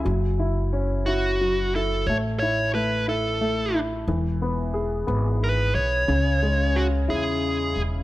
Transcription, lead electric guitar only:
\new Staff \with { instrumentName = "Lead electric guitar" } { \time 6/8 \key e \major \tempo 4. = 60 r4. fis'4 a'8 | cis''8 cis''8 b'8 a'4 r8 | r2 b'8 cis''8~ | cis''4 fis'8 gis'4 r8 | }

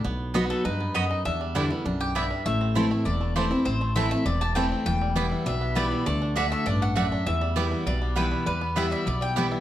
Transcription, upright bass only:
\new Staff \with { instrumentName = "Upright bass" } { \clef bass \time 4/4 \key e \minor \tempo 4 = 200 b,,2 fis,2 | e,2 b,,2 | a,,2 e,,2 | a,,2 e,,2 |
e,,2 b,,2 | d,2 a,,2 | e,2 b,,2 | e,2 b,,2 | }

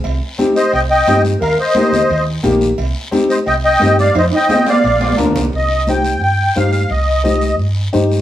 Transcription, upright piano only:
\new Staff \with { instrumentName = "Upright piano" } { \time 4/4 \key c \minor \tempo 4 = 175 << { r1 | r1 | r1 | r1 |
r1 | r2. ees''4 | } \\ { r4 <c' ees' g'>8 r4. <c' ees' g'>8 r8 | r4 <bes ees' g'>8 r4. <bes ees' g'>8 r8 | r4 <c' ees' g'>8 r4. <c' ees' g'>8 r8 | r4 <c' f' aes'>8 r4. <d' f' bes'>8 r8 |
r4 <ees' g' c''>8 r4. <ees' g' c''>8 r8 | r4 <ees' g' c''>8 r4. <ees' g' c''>8 r8 | } >> }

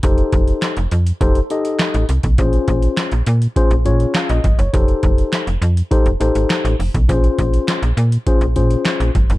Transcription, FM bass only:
\new Staff \with { instrumentName = "FM bass" } { \clef bass \time 4/4 \key bes \dorian \tempo 4 = 102 f,,8 f,,8 r16 f,,16 f,8 f,,8 r8. a,,16 c,16 ces,16 | bes,,8 bes,,8 r16 bes,,16 bes,8 r16 bes,,16 bes,8 r16 bes,,16 g,,16 ges,,16 | f,,8 f,,8 r16 f,,16 f,8 r16 f,,16 a,,16 aes,,16 r16 a,,16 f,,16 ces,16 | bes,,8 bes,,8 r16 bes,,16 bes,8 r16 bes,,16 bes,8 r16 bes,,16 g,,16 ges,,16 | }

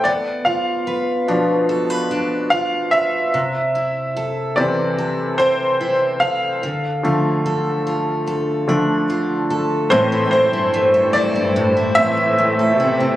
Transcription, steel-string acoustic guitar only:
\new Staff \with { instrumentName = "Steel-string acoustic guitar" } { \time 4/4 \key a \minor \tempo 4 = 73 b8 f'8 b'8 f'8 a'16 b'16 d'8 f'8 b'8 | c8 e'8 a'8 e'8 a'8 c'8 e'8 a'8 | d8 f'8 a'8 f'8 a'8 d'8 f'8 a'8 | a,16 e'16 c'16 e'16 a16 a'16 e'16 c'16 a,16 e'16 c'16 e'16 a16 a'16 e'16 c'16 | }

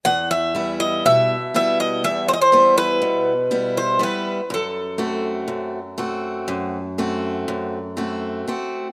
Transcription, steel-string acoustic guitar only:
\new Staff \with { instrumentName = "Steel-string acoustic guitar" } { \time 9/8 \key e \minor \tempo 4. = 40 e,8 <g b e'>8 b,8 <g b e'>8 e,8 <g b e'>8 b,8 <g b e'>8 <g b e'>8 | fis,8 <a c' fis'>8 fis,8 <a c' fis'>8 fis,8 <a c' fis'>8 fis,8 <a c' fis'>8 <a c' fis'>8 | }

